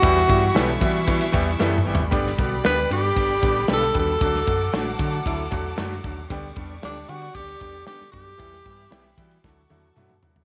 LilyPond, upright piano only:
\new Staff \with { instrumentName = "Upright piano" } { \time 4/4 \key g \lydian \tempo 4 = 115 <e g b e' g'>8 <e g b e' g'>8 <e g b e' a'>8 <e g b e' fis'>8 <e g b e' fis'>8 <e g b e' g'>8 <e g b e' a'>8 <e g b e' g'>8 | <d g b d' g'>8 <d g b d' fis'>8 <d g b d' g'>8 <d g b d' g'>8 <d g b d' g'>8 <d g b d' g'>8 <d g b d' a'>8 <d g b d' fis'>8 | <d fis a d' fis'>8 <d fis a d' fis'>8 <d fis a d' fis'>8 <d fis a d' fis'>8 <d fis a d' e'>8 <d fis a d' fis'>8 <d fis a d' fis'>8 <d fis a d' fis'>8 | <d g b d' g'>8 <d g b d' a'>8 <d g b d' g'>8 <d g b d' g'>8 <d g b d' g'>8 <d g b d' g'>8 <d g b d' g'>8 <d g b d' fis'>8 |
<e g b e' g'>8 <e g b e' g'>8 <e g b e' g'>8 <e g b e' fis'>8 <fis a d' e' fis'>8 <fis a d' e' fis'>8 <fis a d' e' fis'>8 <fis a d' e' fis'>8 | }